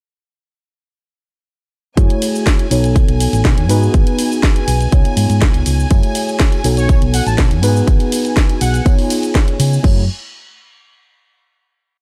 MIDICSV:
0, 0, Header, 1, 6, 480
1, 0, Start_track
1, 0, Tempo, 491803
1, 1926, Time_signature, 4, 2, 24, 8
1, 11729, End_track
2, 0, Start_track
2, 0, Title_t, "String section"
2, 0, Program_c, 0, 48
2, 1929, Note_on_c, 0, 80, 79
2, 9617, Note_off_c, 0, 80, 0
2, 11729, End_track
3, 0, Start_track
3, 0, Title_t, "Analog polysynth"
3, 0, Program_c, 1, 90
3, 6611, Note_on_c, 1, 73, 92
3, 6819, Note_off_c, 1, 73, 0
3, 6965, Note_on_c, 1, 78, 94
3, 7065, Note_off_c, 1, 78, 0
3, 7090, Note_on_c, 1, 81, 92
3, 7164, Note_off_c, 1, 81, 0
3, 7205, Note_on_c, 1, 81, 81
3, 7285, Note_off_c, 1, 81, 0
3, 8404, Note_on_c, 1, 78, 96
3, 8694, Note_off_c, 1, 78, 0
3, 11729, End_track
4, 0, Start_track
4, 0, Title_t, "Tine electric piano"
4, 0, Program_c, 2, 4
4, 1919, Note_on_c, 2, 57, 79
4, 1922, Note_on_c, 2, 64, 75
4, 1927, Note_on_c, 2, 66, 76
4, 1930, Note_on_c, 2, 68, 74
4, 1933, Note_on_c, 2, 73, 89
4, 2596, Note_off_c, 2, 57, 0
4, 2598, Note_off_c, 2, 64, 0
4, 2600, Note_off_c, 2, 66, 0
4, 2601, Note_off_c, 2, 68, 0
4, 2603, Note_off_c, 2, 73, 0
4, 2638, Note_on_c, 2, 59, 77
4, 2642, Note_on_c, 2, 63, 75
4, 2646, Note_on_c, 2, 66, 73
4, 2650, Note_on_c, 2, 69, 75
4, 2653, Note_on_c, 2, 73, 89
4, 3555, Note_off_c, 2, 59, 0
4, 3558, Note_off_c, 2, 63, 0
4, 3560, Note_off_c, 2, 66, 0
4, 3561, Note_off_c, 2, 69, 0
4, 3563, Note_off_c, 2, 73, 0
4, 3599, Note_on_c, 2, 59, 95
4, 3603, Note_on_c, 2, 63, 86
4, 3606, Note_on_c, 2, 66, 88
4, 3611, Note_on_c, 2, 68, 85
4, 3614, Note_on_c, 2, 71, 102
4, 4756, Note_off_c, 2, 59, 0
4, 4758, Note_off_c, 2, 63, 0
4, 4759, Note_off_c, 2, 66, 0
4, 4762, Note_off_c, 2, 68, 0
4, 4763, Note_off_c, 2, 71, 0
4, 4797, Note_on_c, 2, 59, 81
4, 4801, Note_on_c, 2, 63, 72
4, 4804, Note_on_c, 2, 65, 72
4, 4808, Note_on_c, 2, 68, 72
4, 4812, Note_on_c, 2, 73, 86
4, 5715, Note_off_c, 2, 59, 0
4, 5717, Note_off_c, 2, 63, 0
4, 5719, Note_off_c, 2, 65, 0
4, 5720, Note_off_c, 2, 68, 0
4, 5723, Note_off_c, 2, 73, 0
4, 5758, Note_on_c, 2, 57, 83
4, 5762, Note_on_c, 2, 64, 75
4, 5766, Note_on_c, 2, 66, 74
4, 5770, Note_on_c, 2, 68, 75
4, 5773, Note_on_c, 2, 73, 88
4, 6435, Note_off_c, 2, 57, 0
4, 6438, Note_off_c, 2, 64, 0
4, 6439, Note_off_c, 2, 66, 0
4, 6441, Note_off_c, 2, 68, 0
4, 6443, Note_off_c, 2, 73, 0
4, 6479, Note_on_c, 2, 59, 83
4, 6482, Note_on_c, 2, 63, 72
4, 6486, Note_on_c, 2, 66, 75
4, 6490, Note_on_c, 2, 69, 74
4, 6493, Note_on_c, 2, 73, 89
4, 7396, Note_off_c, 2, 59, 0
4, 7397, Note_off_c, 2, 63, 0
4, 7399, Note_off_c, 2, 66, 0
4, 7402, Note_off_c, 2, 69, 0
4, 7403, Note_off_c, 2, 73, 0
4, 7437, Note_on_c, 2, 59, 94
4, 7441, Note_on_c, 2, 63, 89
4, 7445, Note_on_c, 2, 66, 89
4, 7450, Note_on_c, 2, 68, 87
4, 7452, Note_on_c, 2, 71, 106
4, 8595, Note_off_c, 2, 59, 0
4, 8597, Note_off_c, 2, 63, 0
4, 8599, Note_off_c, 2, 66, 0
4, 8601, Note_off_c, 2, 68, 0
4, 8603, Note_off_c, 2, 71, 0
4, 8637, Note_on_c, 2, 59, 81
4, 8641, Note_on_c, 2, 63, 73
4, 8645, Note_on_c, 2, 65, 74
4, 8649, Note_on_c, 2, 68, 75
4, 8652, Note_on_c, 2, 73, 92
4, 9555, Note_off_c, 2, 59, 0
4, 9557, Note_off_c, 2, 63, 0
4, 9559, Note_off_c, 2, 65, 0
4, 9561, Note_off_c, 2, 68, 0
4, 9562, Note_off_c, 2, 73, 0
4, 9592, Note_on_c, 2, 57, 87
4, 9598, Note_on_c, 2, 64, 78
4, 9604, Note_on_c, 2, 66, 79
4, 9609, Note_on_c, 2, 68, 78
4, 9616, Note_on_c, 2, 73, 95
4, 9778, Note_off_c, 2, 57, 0
4, 9782, Note_off_c, 2, 64, 0
4, 9785, Note_off_c, 2, 66, 0
4, 9788, Note_off_c, 2, 68, 0
4, 9791, Note_off_c, 2, 73, 0
4, 11729, End_track
5, 0, Start_track
5, 0, Title_t, "Fingered electric bass"
5, 0, Program_c, 3, 33
5, 1926, Note_on_c, 3, 42, 101
5, 2013, Note_off_c, 3, 42, 0
5, 2646, Note_on_c, 3, 35, 85
5, 2951, Note_off_c, 3, 35, 0
5, 3010, Note_on_c, 3, 35, 92
5, 3176, Note_off_c, 3, 35, 0
5, 3250, Note_on_c, 3, 33, 91
5, 3331, Note_off_c, 3, 33, 0
5, 3489, Note_on_c, 3, 39, 95
5, 3605, Note_off_c, 3, 39, 0
5, 3605, Note_on_c, 3, 44, 98
5, 3777, Note_off_c, 3, 44, 0
5, 3845, Note_on_c, 3, 32, 100
5, 3933, Note_off_c, 3, 32, 0
5, 4565, Note_on_c, 3, 35, 84
5, 4737, Note_off_c, 3, 35, 0
5, 4806, Note_on_c, 3, 37, 87
5, 4893, Note_off_c, 3, 37, 0
5, 5044, Note_on_c, 3, 44, 97
5, 5132, Note_off_c, 3, 44, 0
5, 5170, Note_on_c, 3, 44, 100
5, 5286, Note_on_c, 3, 37, 94
5, 5301, Note_off_c, 3, 44, 0
5, 5373, Note_off_c, 3, 37, 0
5, 5410, Note_on_c, 3, 37, 86
5, 5491, Note_off_c, 3, 37, 0
5, 5527, Note_on_c, 3, 37, 86
5, 5698, Note_off_c, 3, 37, 0
5, 5767, Note_on_c, 3, 42, 102
5, 5854, Note_off_c, 3, 42, 0
5, 6485, Note_on_c, 3, 35, 86
5, 6791, Note_off_c, 3, 35, 0
5, 6851, Note_on_c, 3, 35, 96
5, 7017, Note_off_c, 3, 35, 0
5, 7090, Note_on_c, 3, 33, 94
5, 7171, Note_off_c, 3, 33, 0
5, 7329, Note_on_c, 3, 39, 96
5, 7445, Note_off_c, 3, 39, 0
5, 7445, Note_on_c, 3, 44, 100
5, 7617, Note_off_c, 3, 44, 0
5, 7686, Note_on_c, 3, 32, 99
5, 7773, Note_off_c, 3, 32, 0
5, 8406, Note_on_c, 3, 35, 87
5, 8577, Note_off_c, 3, 35, 0
5, 9366, Note_on_c, 3, 49, 101
5, 9537, Note_off_c, 3, 49, 0
5, 9606, Note_on_c, 3, 42, 96
5, 9829, Note_off_c, 3, 42, 0
5, 11729, End_track
6, 0, Start_track
6, 0, Title_t, "Drums"
6, 1926, Note_on_c, 9, 36, 126
6, 1927, Note_on_c, 9, 42, 81
6, 1934, Note_on_c, 9, 82, 33
6, 2024, Note_off_c, 9, 36, 0
6, 2024, Note_off_c, 9, 42, 0
6, 2031, Note_off_c, 9, 82, 0
6, 2052, Note_on_c, 9, 42, 56
6, 2150, Note_off_c, 9, 42, 0
6, 2166, Note_on_c, 9, 46, 107
6, 2166, Note_on_c, 9, 51, 75
6, 2174, Note_on_c, 9, 82, 79
6, 2264, Note_off_c, 9, 46, 0
6, 2264, Note_off_c, 9, 51, 0
6, 2271, Note_off_c, 9, 82, 0
6, 2298, Note_on_c, 9, 82, 45
6, 2395, Note_off_c, 9, 82, 0
6, 2406, Note_on_c, 9, 36, 116
6, 2408, Note_on_c, 9, 38, 122
6, 2408, Note_on_c, 9, 42, 82
6, 2416, Note_on_c, 9, 82, 34
6, 2503, Note_off_c, 9, 36, 0
6, 2506, Note_off_c, 9, 38, 0
6, 2506, Note_off_c, 9, 42, 0
6, 2513, Note_off_c, 9, 82, 0
6, 2531, Note_on_c, 9, 42, 54
6, 2629, Note_off_c, 9, 42, 0
6, 2647, Note_on_c, 9, 46, 109
6, 2647, Note_on_c, 9, 51, 76
6, 2654, Note_on_c, 9, 82, 78
6, 2744, Note_off_c, 9, 46, 0
6, 2744, Note_off_c, 9, 51, 0
6, 2751, Note_off_c, 9, 82, 0
6, 2772, Note_on_c, 9, 42, 39
6, 2779, Note_on_c, 9, 82, 47
6, 2869, Note_off_c, 9, 42, 0
6, 2877, Note_off_c, 9, 82, 0
6, 2886, Note_on_c, 9, 36, 118
6, 2888, Note_on_c, 9, 42, 83
6, 2895, Note_on_c, 9, 82, 34
6, 2983, Note_off_c, 9, 36, 0
6, 2985, Note_off_c, 9, 42, 0
6, 2992, Note_off_c, 9, 82, 0
6, 3011, Note_on_c, 9, 42, 57
6, 3109, Note_off_c, 9, 42, 0
6, 3127, Note_on_c, 9, 46, 108
6, 3127, Note_on_c, 9, 51, 76
6, 3135, Note_on_c, 9, 82, 79
6, 3225, Note_off_c, 9, 46, 0
6, 3225, Note_off_c, 9, 51, 0
6, 3232, Note_off_c, 9, 82, 0
6, 3252, Note_on_c, 9, 42, 38
6, 3259, Note_on_c, 9, 82, 44
6, 3350, Note_off_c, 9, 42, 0
6, 3357, Note_off_c, 9, 82, 0
6, 3366, Note_on_c, 9, 36, 115
6, 3366, Note_on_c, 9, 38, 124
6, 3367, Note_on_c, 9, 42, 80
6, 3374, Note_on_c, 9, 82, 33
6, 3463, Note_off_c, 9, 36, 0
6, 3464, Note_off_c, 9, 38, 0
6, 3464, Note_off_c, 9, 42, 0
6, 3472, Note_off_c, 9, 82, 0
6, 3490, Note_on_c, 9, 42, 55
6, 3588, Note_off_c, 9, 42, 0
6, 3606, Note_on_c, 9, 46, 104
6, 3606, Note_on_c, 9, 51, 75
6, 3613, Note_on_c, 9, 82, 79
6, 3704, Note_off_c, 9, 46, 0
6, 3704, Note_off_c, 9, 51, 0
6, 3711, Note_off_c, 9, 82, 0
6, 3736, Note_on_c, 9, 82, 45
6, 3834, Note_off_c, 9, 82, 0
6, 3845, Note_on_c, 9, 42, 80
6, 3846, Note_on_c, 9, 36, 127
6, 3853, Note_on_c, 9, 82, 33
6, 3943, Note_off_c, 9, 36, 0
6, 3943, Note_off_c, 9, 42, 0
6, 3950, Note_off_c, 9, 82, 0
6, 3970, Note_on_c, 9, 42, 55
6, 4068, Note_off_c, 9, 42, 0
6, 4085, Note_on_c, 9, 46, 108
6, 4085, Note_on_c, 9, 51, 74
6, 4092, Note_on_c, 9, 82, 77
6, 4183, Note_off_c, 9, 46, 0
6, 4183, Note_off_c, 9, 51, 0
6, 4190, Note_off_c, 9, 82, 0
6, 4218, Note_on_c, 9, 82, 45
6, 4316, Note_off_c, 9, 82, 0
6, 4326, Note_on_c, 9, 36, 123
6, 4327, Note_on_c, 9, 38, 121
6, 4327, Note_on_c, 9, 42, 79
6, 4334, Note_on_c, 9, 82, 32
6, 4424, Note_off_c, 9, 36, 0
6, 4424, Note_off_c, 9, 38, 0
6, 4425, Note_off_c, 9, 42, 0
6, 4432, Note_off_c, 9, 82, 0
6, 4451, Note_on_c, 9, 42, 53
6, 4548, Note_off_c, 9, 42, 0
6, 4565, Note_on_c, 9, 46, 112
6, 4565, Note_on_c, 9, 51, 76
6, 4572, Note_on_c, 9, 82, 77
6, 4663, Note_off_c, 9, 46, 0
6, 4663, Note_off_c, 9, 51, 0
6, 4670, Note_off_c, 9, 82, 0
6, 4690, Note_on_c, 9, 42, 39
6, 4697, Note_on_c, 9, 82, 44
6, 4788, Note_off_c, 9, 42, 0
6, 4795, Note_off_c, 9, 82, 0
6, 4806, Note_on_c, 9, 36, 126
6, 4806, Note_on_c, 9, 42, 82
6, 4813, Note_on_c, 9, 82, 32
6, 4904, Note_off_c, 9, 36, 0
6, 4904, Note_off_c, 9, 42, 0
6, 4911, Note_off_c, 9, 82, 0
6, 4930, Note_on_c, 9, 42, 56
6, 5028, Note_off_c, 9, 42, 0
6, 5045, Note_on_c, 9, 46, 110
6, 5045, Note_on_c, 9, 51, 76
6, 5052, Note_on_c, 9, 82, 75
6, 5143, Note_off_c, 9, 46, 0
6, 5143, Note_off_c, 9, 51, 0
6, 5150, Note_off_c, 9, 82, 0
6, 5170, Note_on_c, 9, 42, 37
6, 5177, Note_on_c, 9, 82, 43
6, 5267, Note_off_c, 9, 42, 0
6, 5275, Note_off_c, 9, 82, 0
6, 5285, Note_on_c, 9, 38, 125
6, 5286, Note_on_c, 9, 42, 81
6, 5287, Note_on_c, 9, 36, 126
6, 5293, Note_on_c, 9, 82, 33
6, 5383, Note_off_c, 9, 38, 0
6, 5383, Note_off_c, 9, 42, 0
6, 5384, Note_off_c, 9, 36, 0
6, 5391, Note_off_c, 9, 82, 0
6, 5409, Note_on_c, 9, 42, 55
6, 5507, Note_off_c, 9, 42, 0
6, 5524, Note_on_c, 9, 46, 113
6, 5524, Note_on_c, 9, 51, 76
6, 5531, Note_on_c, 9, 82, 76
6, 5622, Note_off_c, 9, 46, 0
6, 5622, Note_off_c, 9, 51, 0
6, 5629, Note_off_c, 9, 82, 0
6, 5657, Note_on_c, 9, 82, 44
6, 5755, Note_off_c, 9, 82, 0
6, 5764, Note_on_c, 9, 42, 74
6, 5766, Note_on_c, 9, 36, 127
6, 5771, Note_on_c, 9, 82, 32
6, 5772, Note_on_c, 9, 54, 56
6, 5862, Note_off_c, 9, 42, 0
6, 5864, Note_off_c, 9, 36, 0
6, 5869, Note_off_c, 9, 82, 0
6, 5870, Note_off_c, 9, 54, 0
6, 5888, Note_on_c, 9, 42, 55
6, 5895, Note_on_c, 9, 54, 39
6, 5986, Note_off_c, 9, 42, 0
6, 5993, Note_off_c, 9, 54, 0
6, 6003, Note_on_c, 9, 46, 113
6, 6003, Note_on_c, 9, 51, 78
6, 6008, Note_on_c, 9, 54, 92
6, 6010, Note_on_c, 9, 82, 79
6, 6100, Note_off_c, 9, 46, 0
6, 6100, Note_off_c, 9, 51, 0
6, 6105, Note_off_c, 9, 54, 0
6, 6108, Note_off_c, 9, 82, 0
6, 6134, Note_on_c, 9, 54, 39
6, 6134, Note_on_c, 9, 82, 44
6, 6231, Note_off_c, 9, 54, 0
6, 6232, Note_off_c, 9, 82, 0
6, 6242, Note_on_c, 9, 38, 122
6, 6243, Note_on_c, 9, 42, 76
6, 6243, Note_on_c, 9, 54, 56
6, 6246, Note_on_c, 9, 36, 127
6, 6250, Note_on_c, 9, 82, 32
6, 6340, Note_off_c, 9, 38, 0
6, 6340, Note_off_c, 9, 42, 0
6, 6341, Note_off_c, 9, 54, 0
6, 6344, Note_off_c, 9, 36, 0
6, 6348, Note_off_c, 9, 82, 0
6, 6367, Note_on_c, 9, 42, 51
6, 6370, Note_on_c, 9, 54, 40
6, 6465, Note_off_c, 9, 42, 0
6, 6467, Note_off_c, 9, 54, 0
6, 6484, Note_on_c, 9, 46, 110
6, 6484, Note_on_c, 9, 51, 76
6, 6485, Note_on_c, 9, 54, 93
6, 6491, Note_on_c, 9, 82, 76
6, 6582, Note_off_c, 9, 46, 0
6, 6582, Note_off_c, 9, 51, 0
6, 6583, Note_off_c, 9, 54, 0
6, 6589, Note_off_c, 9, 82, 0
6, 6610, Note_on_c, 9, 42, 36
6, 6614, Note_on_c, 9, 54, 39
6, 6617, Note_on_c, 9, 82, 44
6, 6707, Note_off_c, 9, 42, 0
6, 6712, Note_off_c, 9, 54, 0
6, 6714, Note_off_c, 9, 82, 0
6, 6726, Note_on_c, 9, 36, 127
6, 6726, Note_on_c, 9, 42, 80
6, 6728, Note_on_c, 9, 54, 57
6, 6733, Note_on_c, 9, 82, 33
6, 6824, Note_off_c, 9, 36, 0
6, 6824, Note_off_c, 9, 42, 0
6, 6825, Note_off_c, 9, 54, 0
6, 6831, Note_off_c, 9, 82, 0
6, 6851, Note_on_c, 9, 42, 53
6, 6949, Note_off_c, 9, 42, 0
6, 6966, Note_on_c, 9, 46, 117
6, 6966, Note_on_c, 9, 51, 77
6, 6969, Note_on_c, 9, 54, 102
6, 6973, Note_on_c, 9, 82, 78
6, 7064, Note_off_c, 9, 46, 0
6, 7064, Note_off_c, 9, 51, 0
6, 7067, Note_off_c, 9, 54, 0
6, 7071, Note_off_c, 9, 82, 0
6, 7091, Note_on_c, 9, 54, 44
6, 7092, Note_on_c, 9, 42, 36
6, 7099, Note_on_c, 9, 82, 41
6, 7189, Note_off_c, 9, 42, 0
6, 7189, Note_off_c, 9, 54, 0
6, 7196, Note_off_c, 9, 82, 0
6, 7205, Note_on_c, 9, 38, 122
6, 7205, Note_on_c, 9, 42, 79
6, 7206, Note_on_c, 9, 36, 126
6, 7210, Note_on_c, 9, 54, 61
6, 7213, Note_on_c, 9, 82, 32
6, 7303, Note_off_c, 9, 36, 0
6, 7303, Note_off_c, 9, 38, 0
6, 7303, Note_off_c, 9, 42, 0
6, 7307, Note_off_c, 9, 54, 0
6, 7310, Note_off_c, 9, 82, 0
6, 7330, Note_on_c, 9, 42, 54
6, 7428, Note_off_c, 9, 42, 0
6, 7446, Note_on_c, 9, 46, 111
6, 7446, Note_on_c, 9, 51, 77
6, 7446, Note_on_c, 9, 54, 102
6, 7454, Note_on_c, 9, 82, 74
6, 7544, Note_off_c, 9, 46, 0
6, 7544, Note_off_c, 9, 51, 0
6, 7544, Note_off_c, 9, 54, 0
6, 7551, Note_off_c, 9, 82, 0
6, 7570, Note_on_c, 9, 54, 46
6, 7578, Note_on_c, 9, 82, 44
6, 7668, Note_off_c, 9, 54, 0
6, 7675, Note_off_c, 9, 82, 0
6, 7686, Note_on_c, 9, 36, 127
6, 7686, Note_on_c, 9, 42, 75
6, 7688, Note_on_c, 9, 54, 56
6, 7694, Note_on_c, 9, 82, 33
6, 7783, Note_off_c, 9, 36, 0
6, 7784, Note_off_c, 9, 42, 0
6, 7786, Note_off_c, 9, 54, 0
6, 7791, Note_off_c, 9, 82, 0
6, 7810, Note_on_c, 9, 42, 52
6, 7810, Note_on_c, 9, 54, 39
6, 7907, Note_off_c, 9, 42, 0
6, 7908, Note_off_c, 9, 54, 0
6, 7926, Note_on_c, 9, 54, 101
6, 7927, Note_on_c, 9, 46, 113
6, 7927, Note_on_c, 9, 51, 81
6, 7934, Note_on_c, 9, 82, 80
6, 8024, Note_off_c, 9, 54, 0
6, 8025, Note_off_c, 9, 46, 0
6, 8025, Note_off_c, 9, 51, 0
6, 8032, Note_off_c, 9, 82, 0
6, 8042, Note_on_c, 9, 54, 40
6, 8051, Note_on_c, 9, 42, 36
6, 8058, Note_on_c, 9, 82, 45
6, 8140, Note_off_c, 9, 54, 0
6, 8149, Note_off_c, 9, 42, 0
6, 8156, Note_off_c, 9, 82, 0
6, 8163, Note_on_c, 9, 54, 61
6, 8166, Note_on_c, 9, 36, 126
6, 8166, Note_on_c, 9, 38, 114
6, 8167, Note_on_c, 9, 42, 73
6, 8174, Note_on_c, 9, 82, 32
6, 8261, Note_off_c, 9, 54, 0
6, 8263, Note_off_c, 9, 36, 0
6, 8264, Note_off_c, 9, 38, 0
6, 8264, Note_off_c, 9, 42, 0
6, 8272, Note_off_c, 9, 82, 0
6, 8291, Note_on_c, 9, 42, 52
6, 8302, Note_on_c, 9, 54, 38
6, 8388, Note_off_c, 9, 42, 0
6, 8400, Note_off_c, 9, 54, 0
6, 8405, Note_on_c, 9, 46, 108
6, 8405, Note_on_c, 9, 51, 83
6, 8408, Note_on_c, 9, 54, 93
6, 8412, Note_on_c, 9, 82, 75
6, 8502, Note_off_c, 9, 46, 0
6, 8502, Note_off_c, 9, 51, 0
6, 8505, Note_off_c, 9, 54, 0
6, 8509, Note_off_c, 9, 82, 0
6, 8530, Note_on_c, 9, 42, 37
6, 8530, Note_on_c, 9, 54, 43
6, 8538, Note_on_c, 9, 82, 45
6, 8628, Note_off_c, 9, 42, 0
6, 8628, Note_off_c, 9, 54, 0
6, 8635, Note_off_c, 9, 82, 0
6, 8645, Note_on_c, 9, 36, 126
6, 8646, Note_on_c, 9, 42, 76
6, 8646, Note_on_c, 9, 54, 59
6, 8654, Note_on_c, 9, 82, 34
6, 8743, Note_off_c, 9, 36, 0
6, 8743, Note_off_c, 9, 54, 0
6, 8744, Note_off_c, 9, 42, 0
6, 8751, Note_off_c, 9, 82, 0
6, 8770, Note_on_c, 9, 46, 67
6, 8776, Note_on_c, 9, 54, 37
6, 8867, Note_off_c, 9, 46, 0
6, 8874, Note_off_c, 9, 54, 0
6, 8885, Note_on_c, 9, 46, 111
6, 8885, Note_on_c, 9, 51, 84
6, 8888, Note_on_c, 9, 54, 101
6, 8892, Note_on_c, 9, 82, 78
6, 8983, Note_off_c, 9, 46, 0
6, 8983, Note_off_c, 9, 51, 0
6, 8986, Note_off_c, 9, 54, 0
6, 8990, Note_off_c, 9, 82, 0
6, 9011, Note_on_c, 9, 42, 35
6, 9014, Note_on_c, 9, 54, 43
6, 9018, Note_on_c, 9, 82, 43
6, 9108, Note_off_c, 9, 42, 0
6, 9111, Note_off_c, 9, 54, 0
6, 9116, Note_off_c, 9, 82, 0
6, 9125, Note_on_c, 9, 36, 123
6, 9127, Note_on_c, 9, 38, 121
6, 9127, Note_on_c, 9, 42, 76
6, 9134, Note_on_c, 9, 82, 33
6, 9223, Note_off_c, 9, 36, 0
6, 9224, Note_off_c, 9, 38, 0
6, 9225, Note_off_c, 9, 42, 0
6, 9232, Note_off_c, 9, 82, 0
6, 9252, Note_on_c, 9, 42, 52
6, 9349, Note_off_c, 9, 42, 0
6, 9364, Note_on_c, 9, 54, 92
6, 9367, Note_on_c, 9, 46, 112
6, 9367, Note_on_c, 9, 51, 82
6, 9374, Note_on_c, 9, 82, 77
6, 9462, Note_off_c, 9, 54, 0
6, 9464, Note_off_c, 9, 46, 0
6, 9464, Note_off_c, 9, 51, 0
6, 9471, Note_off_c, 9, 82, 0
6, 9492, Note_on_c, 9, 54, 44
6, 9498, Note_on_c, 9, 82, 45
6, 9589, Note_off_c, 9, 54, 0
6, 9596, Note_off_c, 9, 82, 0
6, 9605, Note_on_c, 9, 36, 118
6, 9605, Note_on_c, 9, 49, 85
6, 9703, Note_off_c, 9, 36, 0
6, 9703, Note_off_c, 9, 49, 0
6, 11729, End_track
0, 0, End_of_file